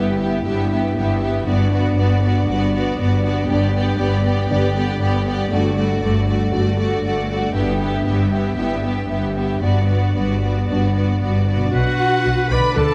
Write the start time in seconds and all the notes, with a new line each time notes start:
Already playing: G1 G2 B3 E4 G4 E5
0.12 B4
0.19 B3 G4 E5
0.28 G4
0.45 G1 G2 B3 G4 E5
0.62 B3
0.71 B3 G4 E5
0.79 G4
0.96 G1 G2 B3 G4 E5
1.13 B4
1.21 B3 G4 E5
1.29 G4
1.46 G1 G2 B3 D4 F#4 D5
1.63 B3
1.72 B3 F#4 D5
1.80 F#4
1.97 G1 G2 B3 F#4 D5
2.13 B4
2.23 B3 F#4 D5
2.30 F#4
2.46 G1 G2 B3 F#4 D5
2.64 B3
2.73 B3 F#4 D5
2.81 F#4
2.98 G1 G2 B3 F#4 D5
3.14 B4
3.24 B3 F#4 D5
3.31 F#4
3.47 G1 G2 B3 D4 G4 D5
3.65 B3
3.74 B3 G4 D5
3.81 G4
3.98 G1 G2 B3 G4 D5
4.17 B4
4.25 B3 G4 D5
4.34 G4
4.50 G1 G2 D3 B3 D4 G4 D5
4.66 B3
4.75 B3 G4 D5
4.83 G4
4.99 G1 G2 B3 G4 D5
5.16 B4
5.25 B3 D5
5.30 G4
5.50 G1 G2 A3 D4 F#4 D5
5.66 A3
5.76 A3 F#4 D5
5.83 F#4
6.00 G1 G2 A3 D5
6.05 F#4
6.17 A4
6.27 A3 F#4 D5
6.34 F#4
6.52 G1 G2 A3 D4 F#4 D5
6.56 F#4
6.69 A3
6.78 A3 F#4 D5
6.86 F#4
7.03 G1 G2 A3 F#4 D5
7.21 A4
7.30 A3 F#4 D5
7.37 F#4
7.54 G1 G2 B3 E4 G4 E5
7.73 B3
7.80 B3 G4 E5
7.90 G4
8.05 G1 G2 B3 G4 E5
8.24 B4
8.32 B3 G4 E5
8.41 G4
8.56 G1 G2 B3 E4 G4 E5
8.75 B3
8.84 B3 G4 E5
8.93 G4
9.09 G1 G2 B3 G4 E5
9.28 B4
9.35 B3 G4 E5
9.45 G4
9.62 G1 G2 B3 D4 F#4 D5
9.81 B3
9.88 B3 F#4 D5
9.98 F#4
10.15 G1 G2 B3 F#4 D5
10.35 B4
10.43 B3 F#4 D5
10.53 F#4
10.69 G1 G2 B3 D4 F#4 D5
10.87 B3
10.95 B3 F#4 D5
11.05 F#4
11.21 G1 G2 B3 F#4 D5
11.39 B4
11.47 B3 F#4 D5
11.56 B2 F#4
11.61 B3
11.65 D4
11.69 F#4
11.73 B1 B2 F#4 B4 F#5
12.25 B1 B2
12.50 B1 B2 B4 D5 B5
12.58 D3
12.63 A3
12.68 D4
12.72 D3 F4 A4 A5
12.77 D2 A4 D5 A5